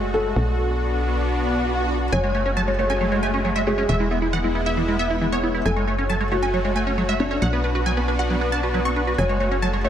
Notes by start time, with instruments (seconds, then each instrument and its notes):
Already playing: analog synth bass F#1, supersaw synth G#3 A3 F#4
0.14 felt piano A4
0.36 analog synth bass B1, supersaw synth B3 D4
1.24 swell
2.12 analog synth bass F#1, acid bass F#3, supersaw synth G#3 A3, felt piano C#5, synth pluck G#5
2.24 acid bass G#3, synth pluck C#5
2.35 acid bass A3, synth pluck C#5
2.46 acid bass C#4, synth pluck C#5
2.57 acid bass F#3, synth pluck A5
2.68 acid bass G#3, synth pluck C#5
2.79 acid bass A3, felt piano C#5, synth pluck C#5
2.90 acid bass C#4, synth pluck G#5
3.01 acid bass F#3, synth pluck C#5
3.12 acid bass G#3, synth pluck C#5
3.23 acid bass A3, synth pluck G#5
3.34 acid bass C#4, synth pluck C#5
3.45 acid bass F#3, synth pluck C#5
3.56 acid bass G#3, synth pluck E5
3.67 acid bass A3, felt piano G#4, synth pluck C#5
3.78 acid bass C#4, synth pluck C#5
3.89 analog synth bass E1, acid bass E3, supersaw synth B3 E4, synth pluck E5
4.00 acid bass G#3, synth pluck E4
4.11 acid bass B3, synth pluck E4
4.22 synth pluck E4, acid bass E4
4.33 acid bass E3, synth pluck F#5
4.44 acid bass G#3, synth pluck E4
4.55 acid bass B3, synth pluck E4
4.66 acid bass E4, synth pluck E5
4.77 acid bass E3, synth pluck E4
4.88 acid bass G#3, synth pluck E4
4.99 acid bass B3, synth pluck E5
5.10 acid bass E4, synth pluck E4
5.21 acid bass E3, synth pluck E4
5.32 acid bass B3, synth pluck C#5
5.43 acid bass B3, synth pluck E4
5.54 acid bass E4, synth pluck E4
5.65 analog synth bass F#1, acid bass F#3, supersaw synth A3 F#4, felt piano A4, synth pluck G#5
5.76 acid bass G#3, synth pluck C#5
5.87 acid bass A3, synth pluck C#5
5.98 acid bass C#4, synth pluck C#5
6.09 acid bass F#3, synth pluck A5
6.21 acid bass G#3, synth pluck C#5
6.32 acid bass A3, felt piano F#4, synth pluck C#5
6.42 acid bass C#4, synth pluck G#5
6.54 acid bass F#3, synth pluck C#5
6.65 acid bass G#3, synth pluck C#5
6.76 acid bass A3, synth pluck G#5
6.87 acid bass C#4, synth pluck C#5
6.98 acid bass F#3, synth pluck C#5
7.09 acid bass G#3, synth pluck E5
7.20 acid bass A3, felt piano D4, synth pluck C#5
7.31 acid bass C#4, synth pluck C#5
7.42 analog synth bass B1, acid bass F#3, supersaw synth B3 D4, synth pluck F#5
7.53 acid bass B3, synth pluck B4
7.64 acid bass D4, synth pluck B4
7.75 acid bass F#4, synth pluck B4
7.86 acid bass F#3, synth pluck G#5
7.97 acid bass B3, synth pluck B4
8.08 acid bass D4, synth pluck B4
8.19 acid bass F#4, synth pluck F#5
8.30 acid bass F#3, synth pluck B4
8.41 acid bass B3, synth pluck B4
8.52 acid bass D4, synth pluck A5
8.63 acid bass F#4, synth pluck B4
8.74 acid bass F#3, synth pluck B4
8.85 acid bass C4, synth pluck C#6
8.96 acid bass D4, synth pluck B4
9.07 acid bass F#4, synth pluck B4
9.18 analog synth bass F#1, acid bass F#3, supersaw synth G#3 A3, felt piano C#5, synth pluck G#5
9.29 acid bass G#3, synth pluck C#5
9.40 acid bass A3, synth pluck C#5
9.51 acid bass C#4, synth pluck C#5
9.62 acid bass F#3, synth pluck A5
9.73 acid bass G#3, synth pluck C#5
9.84 acid bass A3, synth pluck C#5, felt piano C#5